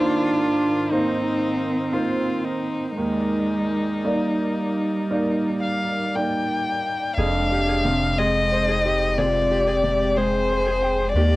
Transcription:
Already playing: G#2 D#3 A#3 D4 F4 A#4 C5
0.91 A#3 C4 D#4 C5
1.92 A#3 D#4 F4 C5
2.44 D#4
2.96 D#2 G#3 D#4 A#4 D5
4.05 G3 A#3 D#4 D5
5.11 A#3 D#4 D5
5.63 F5
6.15 A#3 D#4 D5 G5
7.18 F1 F2 G#3 C4 D4 G#4 F5 G5
7.52 G4
7.68 G#4
7.85 C3
8.18 G#3 C4 G#4 D#5
8.52 C5
8.68 D#4 G#4
8.86 G4
9.18 C3 F4 G#4 D5
9.51 G4
9.66 G4 G#4
9.83 C3
10.15 G#3 G#4 C5
10.50 C5
10.66 G#4
10.82 G5
11.14 D#2 A#3 G4 D5 G5

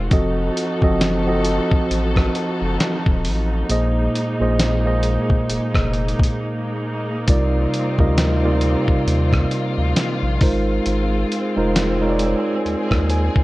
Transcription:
0.11 F1 F3 C4 D#4 F#4 A4 D#5, kick, closed hi-hat
0.57 closed hi-hat
0.82 F#1 F3 C4 F#4 A4 D#5, kick
1.01 snare, closed hi-hat
1.26 F3 C4 F#4 A4 D#5
1.45 closed hi-hat
1.72 kick
1.91 A1, closed hi-hat
2.16 kick, cross-stick
2.35 closed hi-hat
2.61 F#1
2.80 snare, closed hi-hat
3.06 D#1, kick
3.25 A1, open hi-hat
3.69 A#1 A#2 G#3 A#3 G#4 C5 D#5, closed hi-hat
4.15 closed hi-hat
4.40 A#1 A#2 A#3 G#4 C5 D#5
4.59 snare, closed hi-hat
4.85 A#2 A#3 G#4 C5 D#5
5.03 closed hi-hat
5.30 kick
5.49 F1, closed hi-hat
5.75 F1, kick, cross-stick
5.94 closed hi-hat
6.09 closed hi-hat
6.19 kick
6.24 closed hi-hat
7.27 C2 C3 G3 C4 D#4 F4 A#4 D5, kick, closed hi-hat
7.74 closed hi-hat
7.98 D2 C3 G3 D#4 F4 A#4 D#5, kick
8.18 snare, closed hi-hat
8.43 C3 G3 D#4 F4 A#4 D5
8.61 closed hi-hat
8.88 kick
9.07 D#2, closed hi-hat
9.33 kick, cross-stick
9.51 closed hi-hat
9.78 D2
9.96 snare, closed hi-hat
10.22 A#1
10.41 G#1 G#3 C4 D#4 F4 A#4 C5, kick, open hi-hat
10.86 G#1, closed hi-hat
11.32 closed hi-hat
11.56 F1 G#3 D#4 F4 A#4 C5
11.76 snare, closed hi-hat
12.01 G#3 D#4 F4 A#4 C#5
12.10 D5
12.19 G#4, closed hi-hat
12.65 D#2, closed hi-hat
12.91 D#2, kick, cross-stick
13.10 G#5, closed hi-hat
13.36 kick

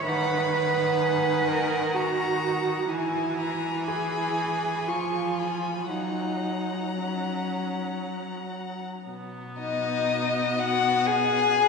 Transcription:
0.06 D#3 B4 F#5 B5
0.55 F#5
1.02 G#5
1.49 A#4
1.95 F#4 F#5 A#5
2.89 E3 E4 G#5
3.39 A#5
3.88 G#4 B5
4.89 F3 F4 C#6
5.39 B5
5.90 F#3 D#4 F#5 A#5
6.98 C#4
9.08 B2 B3
9.57 D#4 D#5
10.59 F#4 F#5
11.06 G#4 G#5

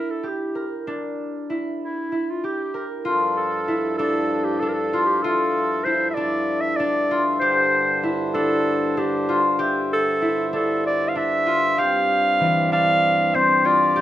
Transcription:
Already playing: D4 E4 A#4
0.11 A4
0.23 G4
0.29 G4
0.55 A#4
0.87 D4
1.50 E4
1.84 E4
2.12 E4
2.31 F4
2.44 G4
2.74 A#4
3.05 G2 F3 D4 F4 A4
3.37 A4
3.68 E4
3.98 D4 A4
4.45 G4
4.60 D4 A4
4.68 A#4
4.73 A4
4.93 F4
5.06 G4
5.23 F4 A4 E5
5.85 E4 C5
6.10 D5 E5
6.17 D4
6.61 E5
6.76 D4 D5
7.11 F4
7.39 D3 D4 G4 C5
8.03 E4
8.34 D4 A4
8.97 D4 G4
9.29 F4
9.59 G4 E5
9.93 A4
10.22 E4
10.53 D4 A4
10.87 D5
11.09 F5
11.15 D4 E5
11.47 F4
11.78 G3 C4 G4 F5
12.41 E3
12.72 D4 F5
13.34 C4 C5
13.65 F4 D5
13.96 G4

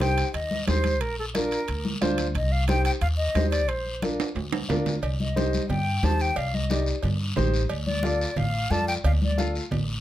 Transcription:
Already playing: C2
0.00 D#4 G4 C5 G5, high conga, high timbale, short guiro
0.18 high timbale, short guiro
0.34 D#2 D#5, high conga, high timbale, long guiro
0.51 high conga
0.67 D#2 D#4 G4 C5, high conga, high timbale, low timbale, short guiro
0.84 high conga, high timbale, short guiro
1.01 A#1 A#4, high timbale, long guiro
1.19 A4, high conga
1.34 D4 F4 A#4, high conga, high timbale, short guiro
1.51 high timbale, short guiro
1.68 D2, high conga, high timbale, long guiro
1.85 high conga
2.01 D2 D4 F4 C5, high conga, high timbale, low timbale, short guiro
2.18 high conga, high timbale, short guiro
2.35 C2 D#5, high timbale, long guiro
2.52 F5, high conga
2.68 D#4 G4 C5 G5, high conga, high timbale, short guiro
2.85 G5, high timbale, short guiro
3.01 D#2 F5, high conga, high timbale, long guiro
3.17 D#5
3.35 D#2 D#4 G4 C5, high conga, high timbale, low timbale, short guiro
3.51 D5, high timbale, short guiro
3.68 A#1 C5, high timbale, long guiro
3.86 high conga
4.02 D4 F4 A#4, high conga, high timbale, short guiro
4.20 high timbale, short guiro
4.35 D2, high conga, low timbale, long guiro
4.52 high conga, high timbale
4.69 D2 D4 F4 A#4, low conga, low timbale, short guiro
4.86 low conga, low timbale, short guiro
5.02 C2, cowbell, high conga, long guiro
5.20 D#5, high conga
5.36 D#4 G4 C5, high conga, short guiro
5.53 high conga, short guiro
5.69 G2 G5, cowbell, high conga, low conga, long guiro
6.03 D#2 D#4 G4 C5 A5, high conga, low timbale, short guiro
6.20 G5, short guiro
6.36 C2 F5, cowbell, high conga, long guiro
6.54 D#5, high conga
6.70 D#4 G4 D5, high conga, short guiro
6.86 short guiro
7.03 G2, cowbell, high conga, low conga, long guiro
7.36 A1 D#4 G4 C5, high conga, low conga, low timbale, short guiro
7.54 short guiro
7.69 D2, cowbell, high conga, long guiro
7.86 D5, high conga
8.03 F4 A4 D5, high conga, short guiro
8.21 short guiro
8.36 A1 F5, cowbell, high conga, low conga, long guiro
8.70 F2 F4 A4 D5 A5, high conga, short guiro
8.88 G5, short guiro
9.04 D2 F5, cowbell, high conga, low conga, long guiro
9.22 D5, high conga
9.38 F4 A4 F5, high conga, short guiro
9.55 short guiro
9.71 A1, cowbell, high conga, low conga, long guiro

